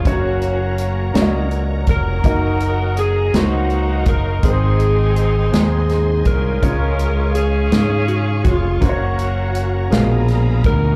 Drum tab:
HH |xxxxxx|xxxxxx|xxxxxx|xxxxxx|
SD |---o--|---o--|---oo-|---o--|
BD |o----o|o----o|o----o|o----o|

HH |xxxxxx|
SD |---oo-|
BD |o----o|